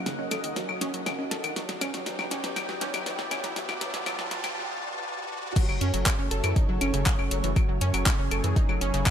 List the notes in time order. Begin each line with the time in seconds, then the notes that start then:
Already playing: F#2 C#3 A#3 D#4 F#4 D#5 F#5, riser
0.06 C#3, snare, closed hi-hat
0.19 D#1 C#4
0.31 D#1 A4, snare, closed hi-hat, claves
0.44 D#2 D#3, closed hi-hat
0.56 F#3, snare, closed hi-hat
0.69 D#1 F#3, claves
0.81 D#1 C#4, snare, closed hi-hat
0.94 D#1 F#3, closed hi-hat
1.06 C#3, snare, closed hi-hat, claves
1.19 D#1 C#4
1.31 D#1 A4, snare, closed hi-hat
1.44 D#1 D#3, closed hi-hat, claves
1.56 F#3 B3 G4 D5 G5, snare, closed hi-hat
1.69 G1 F#3, snare, closed hi-hat
1.81 G2 C#4, snare, closed hi-hat, claves
1.94 G1 F#3, snare, closed hi-hat
2.06 F#3, snare, closed hi-hat
2.19 G1 F#3, snare, claves
2.31 G1 C#4, snare, closed hi-hat
2.44 G2 F#3, snare, closed hi-hat
2.56 F#3, snare, closed hi-hat, claves
2.69 G1 F#3, snare
2.81 G1 C#4, snare, closed hi-hat
2.94 G1 F#3, snare, closed hi-hat, claves
3.06 F#3, snare, closed hi-hat
3.19 G1 F#3, snare
3.31 G1 C#4, snare, closed hi-hat, claves
3.44 G1 F#3, snare, closed hi-hat
3.56 F#3 A5, snare, closed hi-hat, noise sweep
3.69 G1 F#3, snare, claves
3.81 G2 F#3, snare, closed hi-hat
3.94 G1 F#3, snare, closed hi-hat
4.06 F#3, snare, closed hi-hat, claves
4.19 G1 F#3, snare
4.31 G1 F#3, snare, closed hi-hat
4.44 G2 F#3, snare, closed hi-hat, claves
5.56 F#2 C#3 F#3 A3 C#4 A4 C#5, kick, closed hi-hat, crash
5.69 F#1 F#3, claves
5.81 F#2 C#4, closed hi-hat
5.94 F#1 F#3, closed hi-hat
6.06 C#3, kick, clap, closed hi-hat, claves
6.19 F#1 C#4
6.31 F#1 A4, closed hi-hat
6.44 F#2 E3, closed hi-hat, claves
6.56 D#4, kick, closed hi-hat
6.69 F#1 F#3
6.81 F#1 C#4, closed hi-hat, claves
6.94 F#1 C#3, closed hi-hat
7.06 C#3, kick, clap, closed hi-hat
7.19 F#1 C#4, claves
7.31 F#1 F#3, closed hi-hat
7.44 F#1 E3, closed hi-hat
7.56 F#3 G#4, kick, closed hi-hat, claves
7.69 F#1 F#3
7.81 F#2 C#4, closed hi-hat
7.94 F#1 F#3, closed hi-hat, claves
8.06 C#3, kick, clap, closed hi-hat
8.19 F#1 C#4
8.31 F#1 A4, closed hi-hat, claves
8.44 F#2 E3, closed hi-hat
8.56 D#4, kick, closed hi-hat
8.69 F#1 F#3, claves
8.81 F#1 C#4, closed hi-hat
8.94 F#1 C#3, closed hi-hat
9.06 kick, clap, closed hi-hat, claves